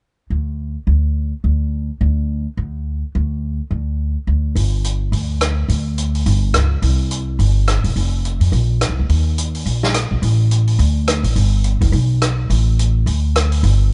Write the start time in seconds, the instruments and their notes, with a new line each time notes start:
0.30 upright bass D2
0.87 upright bass D2
1.44 upright bass D2
2.01 upright bass D2
2.57 upright bass D2
3.15 upright bass D2
3.71 upright bass D2
4.27 upright bass D2
4.55 upright bass G1, open hi-hat
4.84 closed hi-hat
5.12 upright bass D2, open hi-hat
5.41 cross-stick, closed hi-hat
5.69 upright bass D2, open hi-hat
5.98 closed hi-hat
6.15 open hi-hat
6.26 upright bass G1, open hi-hat
6.53 upright bass C#2, cross-stick, closed hi-hat
6.82 upright bass C2, open hi-hat
7.11 closed hi-hat
7.39 upright bass G1, open hi-hat
7.67 cross-stick, closed hi-hat
7.84 upright bass E1, open hi-hat
7.96 upright bass F1, open hi-hat
8.25 closed hi-hat
8.40 upright bass F2, open hi-hat
8.52 upright bass A#1, open hi-hat
8.81 cross-stick, closed hi-hat
8.89 upright bass C2
8.99 upright bass D2
9.09 upright bass D#2, open hi-hat
9.38 closed hi-hat
9.55 open hi-hat
9.66 upright bass A#1, open hi-hat
9.83 snare
9.94 cross-stick, closed hi-hat
10.11 upright bass A#1
10.22 upright bass A1, open hi-hat
10.51 closed hi-hat
10.67 open hi-hat
10.79 upright bass D2, open hi-hat
11.07 cross-stick, closed hi-hat
11.23 upright bass A1, open hi-hat
11.36 upright bass G1, open hi-hat
11.64 closed hi-hat
11.81 upright bass F#1, kick, open hi-hat
11.92 upright bass B1, open hi-hat
12.22 cross-stick, closed hi-hat
12.50 upright bass A1, open hi-hat
12.79 closed hi-hat
13.06 upright bass D2, open hi-hat
13.36 cross-stick, closed hi-hat
13.52 open hi-hat
13.63 upright bass G1, open hi-hat